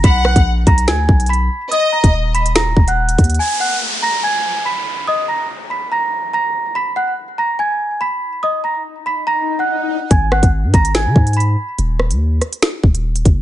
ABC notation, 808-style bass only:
X:1
M:4/4
L:1/16
Q:1/4=143
K:Abdor
V:1 name="808-style bass" clef=bass
=B,,,3 _B,,,3 =B,,,2 =D,,2 B,,,4 z2 | z3 E,,,6- E,,, E,,,4 E,,2 | z16 | z16 |
z16 | z16 | A,,,3 A,,,2 A,, A,,,3 E, A,,4 z2 | E,,,3 E,,3 z4 E,,,4 G,,,2 |]